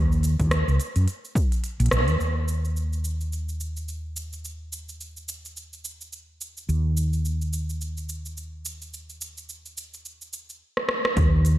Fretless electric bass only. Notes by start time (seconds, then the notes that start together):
Already playing: D#2
0.40 D#2
0.68 C#2
0.96 F#2
1.80 A#1
1.92 A#1
2.08 D#2
2.20 D#2
6.69 D#2
11.17 D#2